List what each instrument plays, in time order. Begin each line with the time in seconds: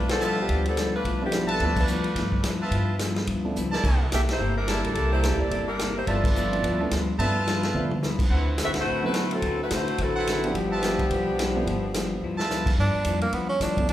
Already playing: upright bass B1, hollow-body jazz guitar G2 F3 B3 E4
0.09 saxophone section F3 B3 D4 A4, snare, ride
0.20 hollow-body jazz guitar G2 F3 B3 E4, trumpet section F4 B4 E5 A5, hi-hat pedal
0.41 saxophone section F3 B3 D4 G4
0.49 upright bass D2, hollow-body jazz guitar G2 F3 B3 E4, kick, ride
0.65 saxophone section F3 B3 D4 A4, ride
0.77 hollow-body jazz guitar G2 F3 B3 E4, snare, hi-hat pedal, ride
0.96 saxophone section A3 D4 F4 B4
1.04 upright bass B1, hollow-body jazz guitar G2 F3 B3 E4, kick, ride
1.22 grand piano F3 A3 B3 D4 E4, saxophone section F3 B3 D4 G4
1.32 hollow-body jazz guitar G2 F3 B3 E4, snare, hi-hat pedal, ride
1.47 trumpet section B4 E5 A5, ride
1.52 saxophone section F3 B3 D4 A4
1.60 upright bass D2, hollow-body jazz guitar G2 F3 B3 E4, grand piano F3 A3 B3 D4 E5, kick, ride
1.64 saxophone section A3 D4 F4 B4
1.76 saxophone section A3 D4 F4 B4, kick, crash
1.87 hollow-body jazz guitar G2 F3 B3 E4, hi-hat pedal
2.04 ride
2.16 upright bass G2, hollow-body jazz guitar G2 F3 B3 E4, kick, snare, ride
2.32 kick
2.43 upright bass D2, hollow-body jazz guitar G2 F3 B3 E4, snare, hi-hat pedal, ride
2.61 trumpet section F4 B4 E5 A5
2.71 upright bass G2, hollow-body jazz guitar G2 F3 B3 E4, kick, ride
2.99 hollow-body jazz guitar G2 F3 B3 E4, snare, hi-hat pedal, ride
3.16 snare, ride
3.27 upright bass D2, hollow-body jazz guitar G2 F3 B3 E4, kick, ride
3.45 grand piano F3 A3 B3 D4 E4
3.56 upright bass C#2, hollow-body jazz guitar G2 F3 B3 E4, hi-hat pedal
3.71 trumpet section E4 A#4 D5 A5, snare
3.84 upright bass C2, hollow-body jazz guitar C3 A#3 E4 A4, kick, crash
4.12 upright bass B1, hollow-body jazz guitar C3 A#3 E4 A4, saxophone section D4 G4 A#4 E5, snare, hi-hat pedal, ride
4.29 saxophone section A#3 E4 G4 C5, snare, ride
4.39 upright bass G1, hollow-body jazz guitar C3 A#3 E4 A4
4.57 saxophone section G3 D4 E4 A#4
4.67 hollow-body jazz guitar C3 A#3 E4 A4, trumpet section E4 A#4 D5 A5, snare, hi-hat pedal, ride
4.84 upright bass B1, saxophone section G3 D4 E4 A4, grand piano G3 A3 A#3 D4 E4, ride
4.95 upright bass C2, hollow-body jazz guitar C3 A#3 E4 A4, trumpet section E4 A#4 D5 A5, kick, ride
5.12 saxophone section A#3 E4 G4 C5
5.23 hollow-body jazz guitar C3 A#3 E4 A4, grand piano G3 A3 A#3 D4 E4, snare, hi-hat pedal, ride
5.39 upright bass C#2, saxophone section A#3 E4 G4 D5
5.50 upright bass G1, hollow-body jazz guitar C3 A#3 E4 A4, kick, ride
5.67 saxophone section G3 D4 E4 A#4
5.79 hollow-body jazz guitar C3 A#3 E4 A4, snare, hi-hat pedal, ride
5.96 saxophone section A#3 E4 G4 C5
6.07 upright bass G1, hollow-body jazz guitar G2 F3 B3 E4, saxophone section B3 F4 A4 D5, trumpet section F4 B4 E5 A5, kick, ride
6.24 saxophone section B3 F4 A4 D5, kick, crash
6.35 hollow-body jazz guitar G2 F3 B3 E4, hi-hat pedal
6.51 grand piano F3 A3 B3 D4 E4, ride
6.63 upright bass D2, hollow-body jazz guitar G2 F3 B3 E4, kick, ride
6.80 grand piano F3 A3 B3 D4 E4
6.91 upright bass D2, hollow-body jazz guitar G2 F3 B3 E4, snare, hi-hat pedal, ride
7.18 upright bass G2, hollow-body jazz guitar G2 F3 B3 E4, grand piano F3 A3 B3 D4 E4, trumpet section F4 B4 E5 A5, kick, ride
7.46 hollow-body jazz guitar G2 F3 B3 E4, snare, hi-hat pedal, ride
7.63 snare, ride
7.74 upright bass D2, hollow-body jazz guitar G2 F3 B3 E4, grand piano F3 A3 B3 D4 E4, high tom
7.91 high tom
8.02 hollow-body jazz guitar G2 F3 B3 E4, snare, hi-hat pedal
8.19 kick, crash
8.29 upright bass D2, hollow-body jazz guitar D3 C4 F#4 B4, trumpet section E4 B4 C5 F#5, kick
8.58 hollow-body jazz guitar D3 C4 F#4 B4, snare, hi-hat pedal, ride
8.64 upright bass E2, saxophone section C4 F#4 A4 E5
8.74 upright bass C#2, snare, ride
8.79 saxophone section A3 E4 F#4 C5
8.85 upright bass A1, hollow-body jazz guitar D3 C4 F#4 B4
9.03 grand piano F#3 A3 B3 C4 E4, saxophone section A3 E4 F#4 B4
9.14 hollow-body jazz guitar D3 C4 F#4 B4, snare, hi-hat pedal, ride
9.31 saxophone section F#3 C4 E4 A4, ride
9.42 upright bass D2, hollow-body jazz guitar D3 C4 F#4 B4, kick, ride
9.62 saxophone section A3 E4 F#4 B4
9.70 upright bass A2, hollow-body jazz guitar D3 C4 F#4 B4, saxophone section F#4, snare, hi-hat pedal, ride
9.75 saxophone section A3 E4 C5
9.88 ride
9.98 upright bass A1, hollow-body jazz guitar D3 C4 F#4 B4, saxophone section F#3 C4 E4, kick, ride
10.02 saxophone section A4
10.15 trumpet section E4 B4 C5 F#5
10.27 hollow-body jazz guitar D3 C4 F#4 B4, snare, hi-hat pedal, ride
10.44 grand piano F3 A3 B3 D4 E4, saxophone section F3 B3 D4 G4, ride
10.54 upright bass G1, hollow-body jazz guitar G2 F3 B3 E4, kick, ride
10.71 trumpet section F4 B4 E5 A5
10.83 hollow-body jazz guitar G2 F3 B3 E4, snare, hi-hat pedal, ride
10.99 kick, ride
11.10 upright bass B1, hollow-body jazz guitar G2 F3 B3 E4, kick, ride
11.39 hollow-body jazz guitar G2 F3 B3 E4, snare, hi-hat pedal, ride
11.56 grand piano F3 A3 B3 D4 E4
11.67 upright bass G1, hollow-body jazz guitar G2 F3 B3 E4, kick, ride
11.94 hollow-body jazz guitar G2 F3 B3 E4, snare, hi-hat pedal, ride
12.21 upright bass D2, hollow-body jazz guitar G2 F3 B3 E4
12.38 trumpet section F4 B4 E5 A5, snare
12.50 hollow-body jazz guitar G2 F3 B3 E4, snare, hi-hat pedal
12.66 kick, crash
12.77 upright bass G2, hollow-body jazz guitar G2 F3 B3 E4, tenor saxophone D4
12.94 muted upright bass stroke
13.04 upright bass F2, hollow-body jazz guitar G2 F3 B3 E4, kick, hi-hat pedal, ride
13.21 tenor saxophone A#3, ride
13.33 upright bass E2, hollow-body jazz guitar G2 F3 B3 E4, tenor saxophone B3, kick, ride
13.49 tenor saxophone C#4
13.60 upright bass D2, hollow-body jazz guitar G2 F3 B3 E4, tenor saxophone D4, kick, snare, hi-hat pedal, ride
13.77 grand piano F3 A3 B3 D4 E4, kick, ride
13.88 upright bass B1, hollow-body jazz guitar G2, tenor saxophone D4, kick, ride